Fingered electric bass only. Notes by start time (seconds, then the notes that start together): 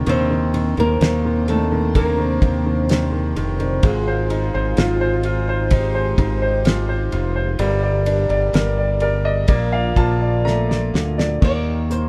0.07 D#2
0.78 D#2
1.01 D#2
2.42 D#2
3.37 F1
3.83 G#1
4.55 G#1
4.78 G#1
6.18 G#1
7.13 F1
7.59 G1
8.29 G1
8.53 G1
9.48 A#1
9.96 A#1
10.94 D2
11.42 D#2